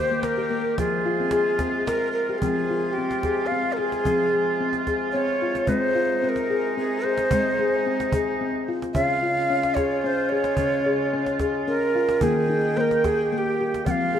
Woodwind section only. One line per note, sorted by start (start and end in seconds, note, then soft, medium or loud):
0.00 0.77 D#3 medium
0.00 0.77 A#3 medium
0.00 0.77 G4 medium
0.79 2.40 C3 medium
0.79 2.40 G#3 medium
0.79 2.40 F4 medium
2.43 8.78 C3 medium
2.43 8.78 G#3 medium
2.43 5.65 F4 medium
5.69 8.78 D#4 medium
8.95 12.21 C#3 medium
8.95 12.20 G#3 medium
8.95 12.20 F4 medium
12.20 13.84 D#3 medium
12.20 13.84 A#3 medium
12.20 13.84 G5 medium
13.85 14.20 C3 medium
13.85 14.20 G#3 medium
13.85 14.20 F4 medium